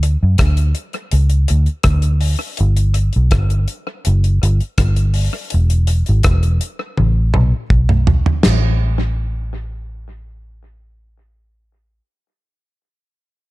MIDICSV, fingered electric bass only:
0, 0, Header, 1, 2, 480
1, 0, Start_track
1, 0, Key_signature, 3, "major"
1, 0, Tempo, 731707
1, 1697, Time_signature, 4, 2, 24, 8
1, 8862, End_track
2, 0, Start_track
2, 0, Title_t, "Fingered electric bass"
2, 0, Program_c, 0, 33
2, 0, Note_on_c, 0, 38, 108
2, 102, Note_off_c, 0, 38, 0
2, 149, Note_on_c, 0, 42, 96
2, 249, Note_off_c, 0, 42, 0
2, 263, Note_on_c, 0, 38, 94
2, 473, Note_off_c, 0, 38, 0
2, 739, Note_on_c, 0, 37, 93
2, 951, Note_off_c, 0, 37, 0
2, 987, Note_on_c, 0, 38, 96
2, 1091, Note_off_c, 0, 38, 0
2, 1216, Note_on_c, 0, 38, 110
2, 1538, Note_off_c, 0, 38, 0
2, 1708, Note_on_c, 0, 31, 108
2, 2024, Note_off_c, 0, 31, 0
2, 2073, Note_on_c, 0, 35, 98
2, 2172, Note_off_c, 0, 35, 0
2, 2182, Note_on_c, 0, 31, 102
2, 2393, Note_off_c, 0, 31, 0
2, 2667, Note_on_c, 0, 30, 105
2, 2876, Note_off_c, 0, 30, 0
2, 2906, Note_on_c, 0, 31, 101
2, 3011, Note_off_c, 0, 31, 0
2, 3142, Note_on_c, 0, 31, 114
2, 3461, Note_off_c, 0, 31, 0
2, 3634, Note_on_c, 0, 28, 110
2, 3948, Note_off_c, 0, 28, 0
2, 3994, Note_on_c, 0, 32, 106
2, 4092, Note_off_c, 0, 32, 0
2, 4105, Note_on_c, 0, 28, 93
2, 4314, Note_off_c, 0, 28, 0
2, 4589, Note_on_c, 0, 33, 102
2, 4796, Note_off_c, 0, 33, 0
2, 4827, Note_on_c, 0, 35, 98
2, 4931, Note_off_c, 0, 35, 0
2, 5059, Note_on_c, 0, 35, 89
2, 5379, Note_off_c, 0, 35, 0
2, 5550, Note_on_c, 0, 33, 86
2, 7865, Note_off_c, 0, 33, 0
2, 8862, End_track
0, 0, End_of_file